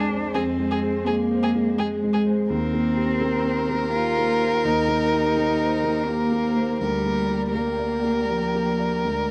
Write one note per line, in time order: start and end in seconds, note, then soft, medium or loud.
0.00 0.29 F2 medium
0.00 0.37 G#3 soft
0.00 2.49 G#3 medium
0.00 0.36 D4 medium
0.00 0.36 G#4 soft
0.00 2.49 G#4 medium
0.00 0.09 C5 soft
0.00 2.45 C5 soft
0.09 0.48 C5 soft
0.34 2.45 F2 medium
0.34 1.07 C4 medium
0.34 0.43 G#4 medium
0.58 0.97 G#3 soft
0.71 0.79 G#4 soft
0.83 1.21 G#4 soft
1.06 1.45 G#3 soft
1.06 1.80 A#3 medium
1.06 1.15 G#4 soft
1.31 1.69 C5 soft
1.43 1.51 G#4 medium
1.55 1.93 G#3 soft
1.78 2.51 G#3 medium
1.78 1.87 G#4 medium
1.78 2.16 G#4 soft
2.04 2.40 G#3 soft
2.14 2.22 G#4 soft
2.26 2.49 C5 medium
2.49 4.61 D#2 medium
2.49 6.79 A#3 medium
2.49 3.92 C4 medium
2.49 6.79 G4 medium
2.49 6.77 A#4 medium
2.49 6.77 C5 medium
2.74 3.11 A#3 soft
2.96 3.34 G4 medium
3.21 3.60 A#3 medium
3.45 3.84 C5 soft
3.69 4.08 A#3 soft
3.93 4.65 F4 loud
3.93 4.31 G4 medium
4.18 4.56 A#3 soft
4.42 4.79 C5 soft
4.64 6.76 D#2 medium
4.64 6.08 D#4 medium
4.88 5.26 A#3 medium
5.13 5.50 G4 medium
5.36 5.74 A#3 soft
5.84 6.22 A#3 soft
6.07 6.81 A#3 medium
6.07 6.46 G4 soft
6.32 6.71 A#3 soft
6.57 6.81 C5 soft
6.80 8.99 D2 medium
6.80 7.55 G3 medium
6.80 9.31 A#3 medium
6.80 9.31 G4 medium
6.80 7.50 A#4 medium
6.80 9.31 D5 soft
7.05 7.44 A#3 soft
7.30 7.68 G4 soft
7.54 8.29 A#3 medium
7.54 7.93 A#3 soft
7.54 9.31 A#4 medium
7.79 8.18 D5 soft
8.04 8.43 A#3 soft
8.28 9.05 F3 medium
8.28 8.68 G4 soft
8.54 8.94 A#3 soft
8.79 9.19 D5 soft
9.04 9.31 D2 soft
9.04 9.31 G#3 soft